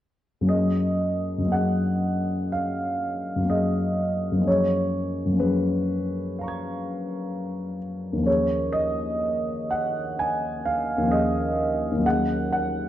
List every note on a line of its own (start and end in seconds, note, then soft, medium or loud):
0.41 1.36 F#2 soft
0.41 1.40 F#3 soft
0.41 1.44 A#3 soft
0.41 1.47 C#4 soft
0.47 1.49 G#4 soft
0.47 1.53 D#5 medium
1.38 3.34 F#2 soft
1.38 3.37 F#3 soft
1.45 3.41 A#3 soft
1.45 3.42 C#4 soft
1.51 3.44 G#4 soft
1.51 2.51 F#5 medium
2.52 3.49 F5 medium
3.36 4.30 F#2 soft
3.36 4.38 F#3 soft
3.43 4.37 A#3 soft
3.43 4.40 C#4 soft
3.48 4.43 G#4 soft
3.48 4.47 D#5 medium
4.32 5.24 F#2 soft
4.36 5.27 F3 soft
4.36 5.31 A#3 soft
4.41 5.34 C#4 soft
4.41 5.37 G#4 soft
4.47 5.42 C#5 medium
5.25 8.14 F#2 soft
5.25 8.15 F3 soft
5.32 8.17 A#3 soft
5.32 8.19 C#4 soft
5.38 8.21 G#4 soft
5.38 7.78 B4 medium
6.39 8.24 F5 soft
6.39 8.25 A#5 soft
6.44 8.26 C#6 soft
6.48 8.29 G#6 soft
8.13 10.96 D#2 soft
8.13 10.99 F3 soft
8.19 11.02 A#3 soft
8.19 11.04 C#4 soft
8.24 11.06 G#4 soft
8.24 8.75 C#5 medium
8.73 9.69 D#5 medium
9.71 10.18 F#5 medium
10.19 10.66 G#5 medium
10.65 11.11 F5 medium
10.98 11.90 D#2 soft
10.98 11.97 F3 soft
11.03 11.96 A#3 soft
11.03 11.99 C#4 soft
11.09 12.01 G#4 soft
11.09 12.05 D#5 medium
11.91 12.88 D#2 soft
11.91 12.89 F#3 soft
11.97 12.89 A#3 soft
12.01 12.89 C#4 soft
12.01 12.89 G#4 soft
12.06 12.51 F#5 medium
12.53 12.89 F#5 medium